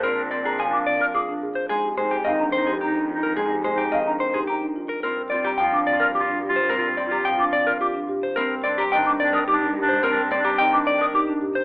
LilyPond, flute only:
\new Staff \with { instrumentName = "Flute" } { \time 3/4 \key f \dorian \tempo 4 = 108 r8. bes''16 aes''16 d'''16 r16 f'''16 d'''16 r8. | r8. g''16 f''16 bes''16 r16 c'''16 bes''16 r8. | r8. g''16 f''16 bes''16 r16 c'''16 bes''16 r8. | r8. bes''16 g''16 d'''16 r16 f'''16 d'''16 r8. |
r8. bes''16 g''16 d'''16 r16 f'''16 d'''16 r8. | r8. bes''16 g''16 d'''16 r16 ees'''16 d'''16 r8. | r8. bes''16 g''16 d'''16 r16 ees'''16 d'''16 r8. | }